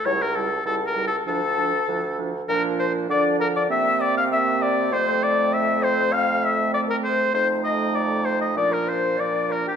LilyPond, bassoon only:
\new Staff \with { instrumentName = "Bassoon" } { \clef bass \time 4/4 \key f \major \tempo 4 = 99 cis,4 cis,4 d,4 d,4 | bes,4 d4 c2 | f,1 | f,2 bes,2 | }